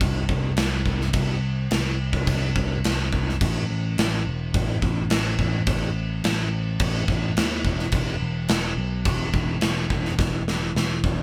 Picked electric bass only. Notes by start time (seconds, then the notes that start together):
0.01 C2
0.29 C2
0.57 C2
0.86 C2
1.14 C2
1.71 C2
2.27 C2
2.56 C2
2.85 C2
3.41 A1
3.69 A1
3.98 A1
4.27 E1
4.54 A1
4.82 A1
5.11 A1
5.39 A1
5.67 A1
6.24 A1
6.81 A1
7.08 A1
7.38 D#2
7.65 E1
7.93 E1
8.20 E1
8.49 E1
8.77 B1
9.06 E1
9.34 E1
9.63 E1
9.90 E1
10.19 E1
10.75 E1